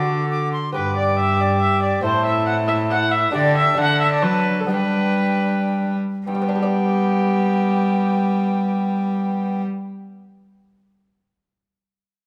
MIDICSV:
0, 0, Header, 1, 6, 480
1, 0, Start_track
1, 0, Key_signature, 1, "major"
1, 0, Tempo, 433213
1, 824, Time_signature, 3, 2, 24, 8
1, 4181, Tempo, 474308
1, 5621, Tempo, 537634
1, 6581, Tempo, 568720
1, 11637, End_track
2, 0, Start_track
2, 0, Title_t, "Recorder"
2, 0, Program_c, 0, 74
2, 0, Note_on_c, 0, 86, 69
2, 286, Note_off_c, 0, 86, 0
2, 338, Note_on_c, 0, 86, 82
2, 565, Note_off_c, 0, 86, 0
2, 584, Note_on_c, 0, 84, 73
2, 809, Note_off_c, 0, 84, 0
2, 815, Note_on_c, 0, 86, 74
2, 2209, Note_off_c, 0, 86, 0
2, 2256, Note_on_c, 0, 81, 78
2, 3391, Note_off_c, 0, 81, 0
2, 3687, Note_on_c, 0, 79, 83
2, 4184, Note_on_c, 0, 81, 85
2, 4199, Note_off_c, 0, 79, 0
2, 5106, Note_off_c, 0, 81, 0
2, 5112, Note_on_c, 0, 79, 75
2, 6304, Note_off_c, 0, 79, 0
2, 6575, Note_on_c, 0, 79, 73
2, 9407, Note_off_c, 0, 79, 0
2, 11637, End_track
3, 0, Start_track
3, 0, Title_t, "Viola"
3, 0, Program_c, 1, 41
3, 0, Note_on_c, 1, 69, 79
3, 586, Note_off_c, 1, 69, 0
3, 831, Note_on_c, 1, 71, 97
3, 1050, Note_off_c, 1, 71, 0
3, 1070, Note_on_c, 1, 74, 92
3, 1300, Note_off_c, 1, 74, 0
3, 1324, Note_on_c, 1, 76, 102
3, 1559, Note_on_c, 1, 74, 91
3, 1576, Note_off_c, 1, 76, 0
3, 1768, Note_off_c, 1, 74, 0
3, 1775, Note_on_c, 1, 76, 107
3, 2012, Note_off_c, 1, 76, 0
3, 2024, Note_on_c, 1, 74, 90
3, 2248, Note_off_c, 1, 74, 0
3, 2255, Note_on_c, 1, 72, 115
3, 2490, Note_off_c, 1, 72, 0
3, 2498, Note_on_c, 1, 76, 98
3, 2723, Note_off_c, 1, 76, 0
3, 2729, Note_on_c, 1, 78, 110
3, 2818, Note_off_c, 1, 78, 0
3, 2969, Note_on_c, 1, 76, 111
3, 3058, Note_off_c, 1, 76, 0
3, 3218, Note_on_c, 1, 78, 118
3, 3454, Note_on_c, 1, 76, 112
3, 3471, Note_off_c, 1, 78, 0
3, 3693, Note_off_c, 1, 76, 0
3, 3706, Note_on_c, 1, 74, 117
3, 3937, Note_off_c, 1, 74, 0
3, 3964, Note_on_c, 1, 76, 114
3, 4189, Note_off_c, 1, 76, 0
3, 4211, Note_on_c, 1, 78, 125
3, 4418, Note_off_c, 1, 78, 0
3, 4426, Note_on_c, 1, 76, 105
3, 4529, Note_off_c, 1, 76, 0
3, 4537, Note_on_c, 1, 74, 104
3, 4648, Note_on_c, 1, 71, 110
3, 4663, Note_off_c, 1, 74, 0
3, 5018, Note_on_c, 1, 69, 69
3, 5033, Note_off_c, 1, 71, 0
3, 5128, Note_off_c, 1, 69, 0
3, 5136, Note_on_c, 1, 71, 103
3, 6315, Note_off_c, 1, 71, 0
3, 6580, Note_on_c, 1, 67, 92
3, 9411, Note_off_c, 1, 67, 0
3, 11637, End_track
4, 0, Start_track
4, 0, Title_t, "Bassoon"
4, 0, Program_c, 2, 70
4, 0, Note_on_c, 2, 66, 72
4, 585, Note_off_c, 2, 66, 0
4, 825, Note_on_c, 2, 67, 72
4, 2260, Note_on_c, 2, 64, 76
4, 2277, Note_off_c, 2, 67, 0
4, 3674, Note_off_c, 2, 64, 0
4, 3680, Note_on_c, 2, 62, 82
4, 4139, Note_off_c, 2, 62, 0
4, 4183, Note_on_c, 2, 62, 82
4, 5100, Note_off_c, 2, 62, 0
4, 5113, Note_on_c, 2, 62, 76
4, 6305, Note_off_c, 2, 62, 0
4, 6581, Note_on_c, 2, 59, 74
4, 9412, Note_off_c, 2, 59, 0
4, 11637, End_track
5, 0, Start_track
5, 0, Title_t, "Lute"
5, 0, Program_c, 3, 24
5, 0, Note_on_c, 3, 50, 61
5, 0, Note_on_c, 3, 57, 58
5, 0, Note_on_c, 3, 62, 55
5, 0, Note_on_c, 3, 66, 52
5, 565, Note_off_c, 3, 50, 0
5, 780, Note_off_c, 3, 57, 0
5, 789, Note_off_c, 3, 62, 0
5, 796, Note_off_c, 3, 66, 0
5, 802, Note_on_c, 3, 59, 50
5, 820, Note_on_c, 3, 71, 50
5, 837, Note_on_c, 3, 43, 55
5, 2204, Note_off_c, 3, 59, 0
5, 2213, Note_off_c, 3, 71, 0
5, 2220, Note_off_c, 3, 43, 0
5, 2229, Note_on_c, 3, 60, 52
5, 2242, Note_on_c, 3, 64, 54
5, 2254, Note_on_c, 3, 69, 54
5, 2271, Note_on_c, 3, 45, 58
5, 3633, Note_off_c, 3, 60, 0
5, 3640, Note_off_c, 3, 64, 0
5, 3646, Note_off_c, 3, 69, 0
5, 3653, Note_off_c, 3, 45, 0
5, 3658, Note_on_c, 3, 57, 57
5, 3671, Note_on_c, 3, 62, 57
5, 3685, Note_on_c, 3, 67, 59
5, 3702, Note_on_c, 3, 50, 66
5, 4128, Note_off_c, 3, 57, 0
5, 4138, Note_off_c, 3, 62, 0
5, 4140, Note_off_c, 3, 50, 0
5, 4141, Note_on_c, 3, 57, 62
5, 4152, Note_on_c, 3, 62, 60
5, 4161, Note_off_c, 3, 67, 0
5, 4172, Note_on_c, 3, 69, 62
5, 4183, Note_on_c, 3, 50, 68
5, 4598, Note_off_c, 3, 50, 0
5, 4639, Note_on_c, 3, 54, 58
5, 5070, Note_off_c, 3, 57, 0
5, 5075, Note_off_c, 3, 62, 0
5, 5077, Note_off_c, 3, 54, 0
5, 5083, Note_on_c, 3, 59, 50
5, 5085, Note_off_c, 3, 69, 0
5, 5100, Note_on_c, 3, 62, 50
5, 5105, Note_on_c, 3, 67, 47
5, 5121, Note_on_c, 3, 55, 52
5, 6314, Note_off_c, 3, 55, 0
5, 6529, Note_off_c, 3, 59, 0
5, 6536, Note_off_c, 3, 62, 0
5, 6539, Note_off_c, 3, 67, 0
5, 6582, Note_on_c, 3, 43, 56
5, 6644, Note_on_c, 3, 55, 56
5, 6703, Note_on_c, 3, 59, 55
5, 6761, Note_on_c, 3, 62, 55
5, 6819, Note_on_c, 3, 67, 58
5, 6876, Note_off_c, 3, 67, 0
5, 6880, Note_on_c, 3, 74, 54
5, 9413, Note_off_c, 3, 43, 0
5, 9476, Note_off_c, 3, 55, 0
5, 9534, Note_off_c, 3, 59, 0
5, 9592, Note_off_c, 3, 62, 0
5, 9711, Note_off_c, 3, 74, 0
5, 11637, End_track
6, 0, Start_track
6, 0, Title_t, "Cello"
6, 0, Program_c, 4, 42
6, 0, Note_on_c, 4, 50, 76
6, 579, Note_off_c, 4, 50, 0
6, 828, Note_on_c, 4, 43, 74
6, 2216, Note_off_c, 4, 43, 0
6, 2262, Note_on_c, 4, 45, 76
6, 3665, Note_off_c, 4, 45, 0
6, 3698, Note_on_c, 4, 50, 84
6, 4149, Note_off_c, 4, 50, 0
6, 4187, Note_on_c, 4, 50, 81
6, 4640, Note_on_c, 4, 54, 73
6, 4655, Note_off_c, 4, 50, 0
6, 5118, Note_off_c, 4, 54, 0
6, 5122, Note_on_c, 4, 55, 67
6, 6326, Note_off_c, 4, 55, 0
6, 6578, Note_on_c, 4, 55, 77
6, 9409, Note_off_c, 4, 55, 0
6, 11637, End_track
0, 0, End_of_file